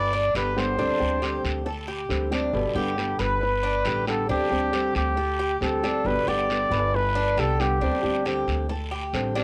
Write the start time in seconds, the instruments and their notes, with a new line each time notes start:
Already playing: upright bass G1, cuban tres B4, trumpet D5
0.13 cuban tres D4
0.34 upright bass G1, nylon-string guitar D3 G3 B3 G4, cuban tres G4, trumpet B4, short guiro
0.56 nylon-string guitar D3 G3 B3 G4, trumpet C5, short guiro
0.78 upright bass D2, nylon-string guitar D3 G3 C4 G4, cuban tres D4, long guiro
1.00 upright bass D2, nylon-string guitar G3 C4 G4
1.21 nylon-string guitar D3 G3 C4 G4, cuban tres G4, short guiro
1.44 upright bass D2, short guiro
1.65 cuban tres A4, muted nylon-string guitar stroke, long guiro
1.88 cuban tres G4
2.09 upright bass D2, nylon-string guitar D3 G3 C4 G4, short guiro
2.31 nylon-string guitar G3 C4 G4, cuban tres D4, short guiro
2.53 upright bass G1, nylon-string guitar B2 D3 G3 B3 G4, long guiro
2.75 upright bass G1, nylon-string guitar D3 G3 B3 G4, cuban tres G4, trumpet G4
2.98 nylon-string guitar D3 G3 B3 G4, short guiro
3.19 upright bass G1, cuban tres B4, trumpet B4, short guiro
3.41 muted nylon-string guitar stroke, long guiro
3.63 cuban tres D4
3.85 upright bass A1, nylon-string guitar D3 G3 B3 G4, cuban tres G4, short guiro
4.07 nylon-string guitar D3 G3 B3 G4, trumpet A4, short guiro
4.29 upright bass D2, nylon-string guitar D3 G3 C4 G4, cuban tres D4, trumpet G4, long guiro
4.51 upright bass D2, nylon-string guitar G3 C4 G4
4.72 nylon-string guitar D3 G3 C4 G4, cuban tres G4, short guiro
4.95 upright bass D2, trumpet G4, short guiro
5.17 cuban tres A4, muted nylon-string guitar stroke, long guiro
5.39 cuban tres G4
5.61 upright bass D2, nylon-string guitar D3 G3 C4 G4, trumpet A4, short guiro
5.83 nylon-string guitar G3 C4 G4, cuban tres D4, short guiro
6.05 upright bass G1, nylon-string guitar B2 D3 G3 B3 G4, trumpet B4, long guiro
6.27 upright bass G1, nylon-string guitar D3 G3 B3 G4, cuban tres G4, trumpet D5
6.50 nylon-string guitar D3 G3 B3 G4, short guiro
6.71 upright bass G1, cuban tres B4, short guiro
6.94 trumpet B4, muted nylon-string guitar stroke, long guiro
7.15 cuban tres D4
7.37 upright bass C2, nylon-string guitar D3 G3 B3 G4, cuban tres G4, trumpet A4, short guiro
7.60 nylon-string guitar D3 G3 B3 G4, trumpet G4, short guiro
7.81 upright bass D2, nylon-string guitar D3 G3 C4 G4, cuban tres D4, long guiro
8.03 upright bass D2, nylon-string guitar G3 C4 G4
8.26 nylon-string guitar D3 G3 C4 G4, cuban tres G4, short guiro
8.48 upright bass D2, short guiro
8.69 cuban tres A4, muted nylon-string guitar stroke, long guiro
8.91 cuban tres G4
9.13 upright bass A1, nylon-string guitar D3 G3 C4 G4, short guiro
9.36 nylon-string guitar G3 C4 G4, cuban tres D4, short guiro